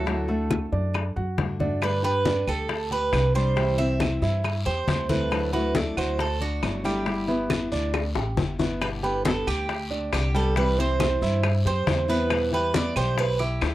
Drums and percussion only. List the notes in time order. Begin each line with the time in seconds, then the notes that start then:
0.07 high bongo, high conga
0.29 high bongo, high conga
0.51 high bongo, high conga, claves
0.73 high bongo, high conga
0.94 high bongo, high conga, claves
1.17 high bongo, high conga
1.38 high bongo, low bongo, high conga
1.60 high conga
1.82 high bongo, high conga, long guiro, claves
2.04 high conga
2.25 high bongo, high conga, short guiro
2.47 high conga, short guiro, claves
2.69 high bongo, high conga, long guiro
2.91 high conga
3.13 high bongo, low bongo, high conga, short guiro, claves
3.35 high conga, short guiro
3.57 high bongo, high conga, long guiro
3.78 high bongo, high conga
4.00 high bongo, high conga, short guiro, claves
4.22 high bongo, high conga, short guiro
4.44 high bongo, high conga, long guiro, claves
4.66 high bongo, high conga
4.88 high bongo, low bongo, high conga, short guiro
5.09 high conga, short guiro
5.31 high bongo, high conga, long guiro, claves
5.53 high conga
5.75 high bongo, high conga, short guiro
5.97 high conga, short guiro, claves
6.19 high bongo, high conga, long guiro
6.41 high conga
6.63 high bongo, low bongo, high conga, short guiro, claves
6.84 high conga, short guiro
7.06 high bongo, high conga, long guiro
7.28 high bongo, high conga
7.50 high bongo, high conga, short guiro, claves
7.72 high bongo, high conga, short guiro
7.94 high bongo, high conga, long guiro, claves
8.15 high bongo, high conga
8.37 low bongo, high conga, short guiro
8.59 low bongo, high conga, short guiro
8.81 high bongo, high conga, long guiro, claves
9.04 high conga
9.25 high bongo, high conga, short guiro
9.47 high conga, short guiro, claves
9.69 high bongo, high conga, long guiro
9.91 high conga
10.13 high bongo, low bongo, high conga, short guiro, claves
10.35 high conga, short guiro
10.56 high bongo, high conga, long guiro
10.78 high bongo, high conga
11.00 high bongo, high conga, short guiro, claves
11.22 high bongo, high conga, short guiro
11.43 high bongo, high conga, long guiro, claves
11.65 high bongo, high conga
11.87 high bongo, low bongo, high conga, short guiro
12.09 short guiro
12.30 high bongo, high conga, long guiro, claves
12.52 high conga
12.74 high bongo, high conga, short guiro
12.96 high conga, short guiro, claves
13.18 high bongo, high conga, long guiro
13.40 high conga
13.61 high bongo, low bongo, high conga, short guiro, claves